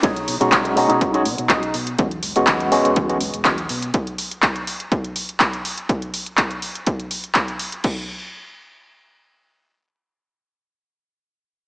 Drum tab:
CC |----------------|----------------|----------------|----------------|
HH |xxoxxxoxxxoxxxox|xxoxxxoxxxoxxxox|xxoxxxoxxxoxxxox|xxoxxxoxxxoxxxox|
CP |----x-------x---|----x-------x---|----x-------x---|----x-------x---|
BD |o---o---o---o---|o---o---o---o---|o---o---o---o---|o---o---o---o---|

CC |x---------------|----------------|
HH |----------------|----------------|
CP |----------------|----------------|
BD |o---------------|----------------|